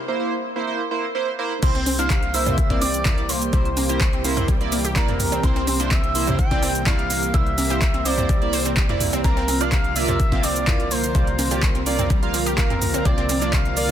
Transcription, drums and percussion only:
1.63 kick, closed hi-hat, crash, cabasa
1.75 closed hi-hat
1.86 open hi-hat, high conga, cabasa
1.99 closed hi-hat, cabasa
2.10 kick, clap, closed hi-hat, cabasa
2.23 closed hi-hat
2.34 open hi-hat, cabasa
2.46 closed hi-hat, mid tom, high bongo, cabasa
2.58 kick, closed hi-hat, cabasa
2.70 kick, closed hi-hat
2.82 open hi-hat, cabasa
2.94 closed hi-hat, cabasa
3.05 kick, clap, closed hi-hat, mid tom, cabasa
3.18 closed hi-hat
3.29 open hi-hat, cabasa
3.42 closed hi-hat, cabasa
3.53 kick, closed hi-hat, cabasa
3.65 closed hi-hat
3.77 open hi-hat, high conga, cabasa
3.89 closed hi-hat, cabasa
4.01 kick, clap, closed hi-hat, cabasa
4.13 closed hi-hat
4.24 open hi-hat, high conga, cabasa
4.37 closed hi-hat, mid tom, cabasa
4.48 kick, closed hi-hat, cabasa
4.61 closed hi-hat
4.72 open hi-hat, cabasa
4.85 closed hi-hat, cabasa
4.96 kick, clap, closed hi-hat, cabasa
5.08 closed hi-hat, mid tom
5.20 mid tom, open hi-hat, cabasa
5.32 closed hi-hat, high bongo, cabasa
5.44 kick, closed hi-hat, cabasa
5.56 closed hi-hat
5.67 open hi-hat, high conga, cabasa
5.80 closed hi-hat, cabasa
5.91 kick, clap, closed hi-hat, cabasa
6.04 closed hi-hat
6.15 open hi-hat, cabasa
6.27 mid tom, high bongo, cabasa
6.39 kick, closed hi-hat, cabasa
6.51 kick, closed hi-hat
6.63 open hi-hat, cabasa
6.75 closed hi-hat, cabasa
6.86 kick, clap, closed hi-hat, mid tom, cabasa
6.99 closed hi-hat
7.10 open hi-hat, cabasa
7.23 closed hi-hat, cabasa
7.34 kick, closed hi-hat, cabasa
7.46 closed hi-hat
7.58 open hi-hat, high conga, cabasa
7.70 closed hi-hat, cabasa
7.82 kick, clap, closed hi-hat, cabasa
7.94 closed hi-hat
8.05 open hi-hat, high conga, cabasa
8.18 mid tom, high bongo, cabasa
8.29 kick, closed hi-hat, cabasa
8.42 closed hi-hat
8.53 open hi-hat, cabasa
8.65 closed hi-hat, cabasa
8.77 kick, clap, closed hi-hat, cabasa
8.89 closed hi-hat, mid tom
9.01 mid tom, open hi-hat, cabasa
9.13 closed hi-hat, high bongo, cabasa
9.24 kick, closed hi-hat, cabasa
9.37 closed hi-hat
9.48 open hi-hat, high conga, cabasa
9.61 closed hi-hat, cabasa
9.72 kick, clap, closed hi-hat, cabasa
9.84 closed hi-hat
9.96 open hi-hat, cabasa
10.08 mid tom, high bongo, cabasa
10.20 kick, closed hi-hat, cabasa
10.32 kick, closed hi-hat
10.43 open hi-hat, cabasa
10.56 closed hi-hat, cabasa
10.67 kick, clap, closed hi-hat, mid tom, cabasa
10.80 closed hi-hat
10.91 open hi-hat, cabasa
11.04 closed hi-hat, cabasa
11.15 kick, closed hi-hat, cabasa
11.27 closed hi-hat
11.39 open hi-hat, high conga, cabasa
11.51 closed hi-hat, cabasa
11.63 kick, clap, closed hi-hat, cabasa
11.75 closed hi-hat
11.86 open hi-hat, high conga, cabasa
11.99 closed hi-hat, mid tom, cabasa
12.10 kick, closed hi-hat, cabasa
12.23 closed hi-hat
12.34 open hi-hat, cabasa
12.46 closed hi-hat, cabasa
12.58 kick, clap, closed hi-hat, cabasa
12.70 closed hi-hat, mid tom
12.82 mid tom, open hi-hat, cabasa
12.94 closed hi-hat, high bongo, cabasa
13.05 kick, closed hi-hat, cabasa
13.18 closed hi-hat
13.29 open hi-hat, high conga, cabasa
13.42 closed hi-hat, cabasa
13.53 kick, clap, closed hi-hat, cabasa
13.65 closed hi-hat
13.77 open hi-hat, cabasa

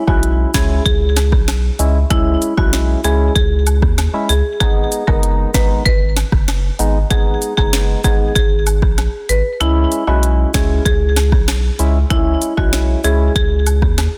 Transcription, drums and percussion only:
0.08 kick, high woodblock
0.23 closed hi-hat
0.54 kick, snare, closed hi-hat, cabasa
0.86 kick, closed hi-hat
1.17 snare, closed hi-hat, cabasa, high woodblock
1.32 kick, cross-stick
1.48 snare, closed hi-hat, high woodblock
1.79 closed hi-hat, cabasa
2.10 kick, closed hi-hat, high woodblock
2.42 closed hi-hat, cabasa
2.58 kick, high woodblock
2.73 snare, closed hi-hat
3.04 closed hi-hat, cabasa
3.36 kick, closed hi-hat
3.67 closed hi-hat, cabasa, high woodblock
3.82 kick, cross-stick
3.98 snare, closed hi-hat, high woodblock
4.29 closed hi-hat, cabasa
4.61 kick, closed hi-hat, high woodblock
4.92 closed hi-hat, cabasa
5.08 kick, high woodblock
5.23 closed hi-hat
5.54 kick, snare, closed hi-hat, cabasa
5.86 kick, closed hi-hat
6.17 snare, closed hi-hat, cabasa, high woodblock
6.32 kick, cross-stick
6.48 snare, closed hi-hat, high woodblock
6.79 closed hi-hat, cabasa
7.10 kick, closed hi-hat, high woodblock
7.42 closed hi-hat, cabasa
7.58 kick, high woodblock
7.73 snare, closed hi-hat
8.04 kick, closed hi-hat, cabasa
8.36 kick, closed hi-hat
8.67 closed hi-hat, cabasa, high woodblock
8.82 kick, cross-stick
8.98 snare, closed hi-hat, high woodblock
9.29 closed hi-hat, cabasa
9.60 closed hi-hat, high woodblock
9.92 closed hi-hat, cabasa
10.08 high woodblock
10.23 closed hi-hat
10.54 kick, snare, closed hi-hat, cabasa
10.86 kick, closed hi-hat
11.16 snare, closed hi-hat, cabasa, high woodblock
11.32 kick, cross-stick
11.48 snare, closed hi-hat, high woodblock
11.79 closed hi-hat, cabasa
12.10 kick, closed hi-hat, high woodblock
12.42 closed hi-hat, cabasa
12.58 kick, high woodblock
12.73 snare, closed hi-hat
13.04 closed hi-hat, cabasa
13.36 kick, closed hi-hat
13.66 closed hi-hat, cabasa, high woodblock
13.82 kick, cross-stick
13.98 snare, closed hi-hat, high woodblock

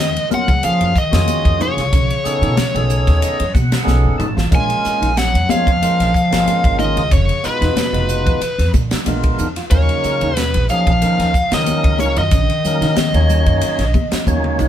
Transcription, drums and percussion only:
0.16 ride
0.31 hi-hat pedal, high conga
0.48 kick, ride
0.63 hi-hat pedal, ride, muted conga
0.81 ride
0.96 kick, hi-hat pedal
1.13 snare, ride
1.28 hi-hat pedal, ride, high conga
1.45 kick, ride
1.60 hi-hat pedal, muted conga, high conga
1.78 snare, ride
1.93 kick, hi-hat pedal, ride, muted conga
2.10 ride
2.25 snare, hi-hat pedal, muted conga
2.43 ride
2.57 snare, hi-hat pedal, ride, high conga
2.76 ride
2.90 hi-hat pedal
3.07 kick, snare, ride
3.22 hi-hat pedal, ride, muted conga
3.40 ride
3.55 kick, hi-hat pedal, high conga
3.72 snare, ride
3.87 snare, hi-hat pedal, high conga
4.20 hi-hat pedal, mid tom, muted conga
4.38 snare
4.52 kick, hi-hat pedal, ride, muted conga
4.70 ride
4.85 snare, hi-hat pedal, muted conga
5.02 ride
5.17 snare, hi-hat pedal, ride
5.35 ride
5.49 hi-hat pedal, high conga
5.67 kick, ride
5.82 hi-hat pedal, ride, muted conga
6.00 snare, ride
6.14 kick, hi-hat pedal
6.32 snare, ride
6.47 hi-hat pedal, ride, high conga
6.64 kick, ride
6.79 hi-hat pedal, muted conga, high conga
6.97 ride
7.11 kick, hi-hat pedal, ride, muted conga
7.29 ride
7.44 snare, hi-hat pedal, muted conga
7.62 snare, ride
7.77 snare, hi-hat pedal, ride, high conga
7.94 ride
8.09 hi-hat pedal
8.27 kick, ride
8.41 hi-hat pedal, ride, muted conga
8.59 snare, ride
8.74 kick, hi-hat pedal, high conga
8.91 snare, ride
9.06 hi-hat pedal, ride, high conga
9.23 kick, ride
9.38 hi-hat pedal, muted conga
9.56 snare, ride
9.71 kick, hi-hat pedal, ride, muted conga
9.89 ride
10.04 snare, hi-hat pedal, muted conga
10.21 ride
10.37 snare, hi-hat pedal, ride
10.54 ride
10.69 hi-hat pedal
10.87 kick, ride
11.02 hi-hat pedal, ride, muted conga
11.20 snare, ride
11.34 kick, hi-hat pedal
11.52 snare, ride
11.66 hi-hat pedal, ride, high conga
11.84 kick, ride
11.99 hi-hat pedal, muted conga, high conga
12.16 ride
12.31 kick, hi-hat pedal, ride, muted conga
12.50 ride
12.65 snare, hi-hat pedal, muted conga, low conga
12.82 snare, ride
12.96 snare, hi-hat pedal, ride, high conga
13.14 ride
13.29 hi-hat pedal, low conga
13.46 kick, ride
13.61 hi-hat pedal, ride, muted conga
13.79 snare, ride
13.94 kick, hi-hat pedal, high conga
14.12 snare, ride
14.27 kick, hi-hat pedal, high conga
14.44 mid tom
14.59 hi-hat pedal, mid tom, muted conga

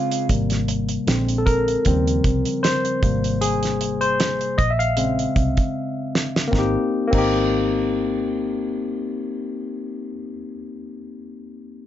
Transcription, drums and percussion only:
0.11 closed hi-hat
0.29 kick, closed hi-hat
0.50 snare, closed hi-hat
0.68 closed hi-hat
0.89 closed hi-hat
1.08 snare, closed hi-hat
1.28 closed hi-hat
1.47 kick, closed hi-hat
1.68 closed hi-hat
1.85 kick, closed hi-hat
2.07 closed hi-hat
2.24 kick, closed hi-hat
2.45 closed hi-hat
2.64 snare, closed hi-hat
2.85 closed hi-hat
3.03 kick, closed hi-hat
3.24 closed hi-hat
3.42 closed hi-hat
3.63 snare, closed hi-hat
3.81 closed hi-hat
4.01 closed hi-hat
4.20 snare, closed hi-hat
4.41 closed hi-hat
4.59 kick, closed hi-hat
4.80 closed hi-hat
4.97 closed hi-hat
5.19 closed hi-hat
5.36 kick, closed hi-hat
5.57 kick, closed hi-hat
6.15 snare
6.36 snare
6.53 kick, snare
7.13 kick, crash

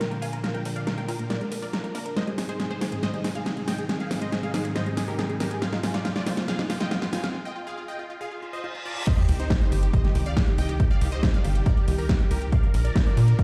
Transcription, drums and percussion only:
0.01 snare, closed hi-hat
0.12 closed hi-hat
0.22 open hi-hat
0.33 closed hi-hat
0.44 snare, closed hi-hat
0.55 closed hi-hat
0.65 open hi-hat
0.76 closed hi-hat
0.87 snare, closed hi-hat
0.98 closed hi-hat
1.09 open hi-hat
1.19 closed hi-hat
1.30 snare, closed hi-hat
1.41 closed hi-hat
1.52 open hi-hat
1.63 open hi-hat
1.73 snare, closed hi-hat
1.84 closed hi-hat
1.95 open hi-hat
2.06 closed hi-hat
2.17 snare, closed hi-hat
2.27 closed hi-hat
2.38 snare, open hi-hat
2.49 closed hi-hat
2.60 snare, closed hi-hat
2.71 closed hi-hat
2.81 snare, open hi-hat
2.92 closed hi-hat
3.03 snare, closed hi-hat
3.14 closed hi-hat
3.24 snare, open hi-hat
3.35 closed hi-hat
3.46 snare, closed hi-hat
3.57 closed hi-hat
3.68 snare, open hi-hat
3.78 closed hi-hat
3.89 snare, closed hi-hat
4.00 closed hi-hat
4.11 snare, open hi-hat
4.22 closed hi-hat
4.32 snare, closed hi-hat
4.43 closed hi-hat
4.54 snare, open hi-hat
4.65 closed hi-hat
4.76 snare, closed hi-hat
4.86 closed hi-hat
4.97 snare, open hi-hat
5.08 open hi-hat
5.19 snare, closed hi-hat
5.30 closed hi-hat
5.40 snare, open hi-hat
5.51 closed hi-hat
5.62 snare, closed hi-hat
5.73 snare, closed hi-hat
5.83 snare, open hi-hat
5.94 snare, closed hi-hat
6.05 snare, closed hi-hat
6.16 snare, closed hi-hat
6.26 snare, open hi-hat
6.37 snare, closed hi-hat
6.48 snare, closed hi-hat
6.59 snare, closed hi-hat
6.70 snare, open hi-hat
6.81 snare, closed hi-hat
6.91 snare, closed hi-hat
7.02 snare, closed hi-hat
7.13 snare, open hi-hat
7.24 snare, closed hi-hat
9.07 kick, closed hi-hat, crash
9.18 closed hi-hat
9.29 open hi-hat
9.40 closed hi-hat
9.50 kick, snare, closed hi-hat
9.61 closed hi-hat
9.72 open hi-hat
9.83 closed hi-hat
9.93 kick, closed hi-hat
10.04 snare, closed hi-hat
10.15 open hi-hat
10.26 closed hi-hat
10.37 kick, snare, closed hi-hat
10.47 closed hi-hat
10.58 open hi-hat
10.69 closed hi-hat
10.80 kick, closed hi-hat
10.91 closed hi-hat
11.01 open hi-hat
11.12 closed hi-hat
11.23 kick, snare, closed hi-hat
11.34 closed hi-hat
11.45 open hi-hat
11.55 closed hi-hat
11.66 kick, closed hi-hat
11.77 closed hi-hat
11.88 open hi-hat
11.98 open hi-hat
12.09 kick, snare, closed hi-hat
12.20 closed hi-hat
12.31 open hi-hat
12.42 closed hi-hat
12.52 kick, closed hi-hat
12.63 closed hi-hat
12.74 open hi-hat
12.85 closed hi-hat
12.96 kick, snare, closed hi-hat
13.06 closed hi-hat
13.17 open hi-hat
13.28 closed hi-hat
13.39 kick, closed hi-hat

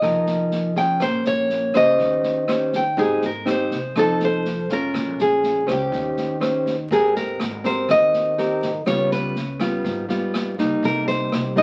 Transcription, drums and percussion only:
0.02 kick, cross-stick, snare
0.26 snare
0.51 snare
0.76 kick, snare
1.00 kick, cross-stick, snare
1.25 snare
1.50 snare
1.74 kick, cross-stick, snare
1.99 kick, snare
2.23 snare
2.48 cross-stick, snare
2.73 kick, snare
2.97 kick, snare
3.22 snare
3.47 cross-stick, snare
3.71 kick, snare
3.96 kick, cross-stick, snare
4.20 snare
4.45 snare
4.69 kick, snare
4.94 kick, cross-stick, snare
5.19 snare
5.43 snare
5.68 kick, cross-stick, snare
5.92 kick, snare
6.17 snare
6.41 cross-stick, snare
6.66 kick, snare
6.91 kick, snare
7.16 snare
7.40 cross-stick, snare
7.64 kick, snare
7.89 kick, cross-stick, snare
8.13 snare
8.38 snare
8.62 kick, snare
8.86 kick, cross-stick, snare
9.11 snare
9.36 snare
9.60 kick, cross-stick, snare
9.84 kick, snare
10.09 snare
10.34 cross-stick, snare
10.58 kick, snare
10.83 kick, snare
11.08 snare
11.32 cross-stick, snare
11.56 kick, snare

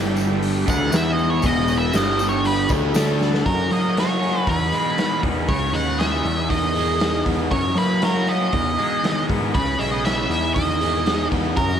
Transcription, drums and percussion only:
0.16 tambourine
0.42 open hi-hat, tambourine
0.68 kick, tambourine
0.82 snare
0.92 snare, open hi-hat, tambourine
1.19 tambourine
1.42 kick, open hi-hat, tambourine
1.68 tambourine
1.93 snare, open hi-hat, tambourine
2.19 tambourine
2.44 open hi-hat, tambourine
2.69 kick, tambourine
2.94 snare, open hi-hat, tambourine
3.21 snare, tambourine
3.34 snare
3.46 kick, open hi-hat
3.71 open hi-hat
3.97 snare, open hi-hat
4.22 open hi-hat
4.47 kick, open hi-hat
4.72 open hi-hat
4.98 snare, open hi-hat
5.23 kick, open hi-hat
5.48 kick, open hi-hat
5.74 open hi-hat
6.00 snare, open hi-hat
6.26 open hi-hat
6.50 kick, open hi-hat
6.76 open hi-hat
7.00 snare, open hi-hat
7.26 kick, open hi-hat
7.51 kick, open hi-hat
7.77 open hi-hat
8.02 snare, open hi-hat
8.27 open hi-hat
8.53 kick, open hi-hat
8.78 open hi-hat
9.04 snare, open hi-hat
9.30 kick, open hi-hat
9.55 kick, open hi-hat
9.81 open hi-hat
10.05 snare, open hi-hat
10.31 open hi-hat
10.56 kick, open hi-hat
10.81 open hi-hat
11.06 snare, open hi-hat
11.32 kick, open hi-hat
11.56 kick, open hi-hat, tambourine
11.70 tambourine

